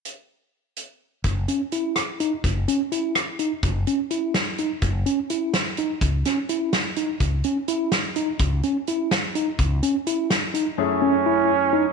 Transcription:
<<
  \new Staff \with { instrumentName = "Tine electric piano" } { \time 5/8 \key fis \dorian \tempo 4 = 126 r2 r8 | r8 cis'8 e'4 dis'8 | r8 cis'8 e'4 dis'8 | r8 cis'8 e'4 dis'8 |
r8 cis'8 e'4 dis'8 | r8 cis'8 e'4 dis'8 | r8 cis'8 e'4 dis'8 | r8 cis'8 e'4 dis'8 |
r8 cis'8 e'4 dis'8 | r8 cis'8 e'4 dis'8 | }
  \new Staff \with { instrumentName = "Flugelhorn" } { \time 5/8 \key fis \dorian r2 r8 | r2 r8 | r2 r8 | r2 r8 |
r2 r8 | r2 r8 | r2 r8 | r2 r8 |
r2 r8 | cis'2~ cis'8 | }
  \new Staff \with { instrumentName = "Grand piano" } { \time 5/8 \key fis \dorian r2 r8 | r2 r8 | r2 r8 | r2 r8 |
r2 r8 | r2 r8 | r2 r8 | r2 r8 |
r2 r8 | <fis, a cis' e' gis'>2~ <fis, a cis' e' gis'>8 | }
  \new Staff \with { instrumentName = "Fretless electric bass" } { \clef bass \time 5/8 \key fis \dorian r2 r8 | fis,,8 r2 | fis,,8 r2 | fis,,8 r2 |
fis,,8 r2 | cis,8 r2 | cis,8 r2 | cis,8 r2 |
cis,8 r2 | r2 r8 | }
  \new DrumStaff \with { instrumentName = "Drums" } \drummode { \time 5/8 hh4. hh4 | <hh bd>8 hh8 hh8 <hh ss>8 hh8 | <hh bd>8 hh8 hh8 <hh ss>8 hh8 | <hh bd>8 hh8 hh8 <hh sn>8 hh8 |
<hh bd>8 hh8 hh8 <hh sn>8 hh8 | <hh bd>8 <hh sn>8 hh8 <hh sn>8 hh8 | <hh bd>8 hh8 hh8 <hh sn>8 hh8 | <hh bd>8 hh8 hh8 <hh sn>8 hh8 |
<hh bd>8 hh8 hh8 <hh sn>8 hh8 | r4. r4 | }
>>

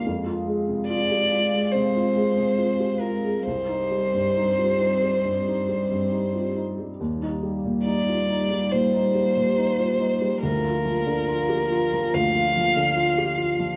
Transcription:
<<
  \new Staff \with { instrumentName = "Violin" } { \time 4/4 \key f \dorian \tempo 4 = 70 r4 d''4 c''4. bes'8 | c''2.~ c''8 r8 | r4 d''4 c''2 | bes'2 f''2 | }
  \new Staff \with { instrumentName = "Analog synth pad" } { \time 4/4 \key f \dorian <c' aes' f''>1 | <c' g' ees''>1 | <bes ees' g'>1 | <bes f' f''>1 | }
  \new Staff \with { instrumentName = "Felt piano" } { \time 4/4 \key f \dorian f,16 f'16 aes16 c16 f'16 g'16 f'16 aes16 c16 f'16 aes16 c16 f'16 g'16 f'16 aes16 | c,16 ees'16 g16 g,16 ees'16 f'16 ees'16 g16 g,16 ees'16 g16 g,16 ees'16 f'16 ees'16 g16 | ees,16 ees'16 g16 bes,16 ees'16 f'16 ees'16 g16 bes,16 ees'16 g16 bes,16 ees'16 f'16 ees'16 g16 | d,16 f'16 f16 d16 f'16 g'16 f'16 f16 d,16 f'16 f16 d16 f'16 g'16 f'16 f16 | }
  \new Staff \with { instrumentName = "Cello" } { \clef bass \time 4/4 \key f \dorian aes1 | g2.~ g8. r16 | g1 | f1 | }
>>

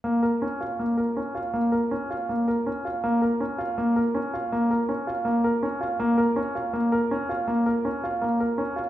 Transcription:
\new Staff \with { instrumentName = "Grand piano" } { \time 4/4 \key bes \minor \tempo 4 = 81 bes16 bes'16 des'16 f'16 bes16 bes'16 des'16 f'16 bes16 bes'16 des'16 f'16 bes16 bes'16 des'16 f'16 | bes16 bes'16 des'16 f'16 bes16 bes'16 des'16 f'16 bes16 bes'16 des'16 f'16 bes16 bes'16 des'16 f'16 | bes16 bes'16 des'16 f'16 bes16 bes'16 des'16 f'16 bes16 bes'16 des'16 f'16 bes16 bes'16 des'16 f'16 | }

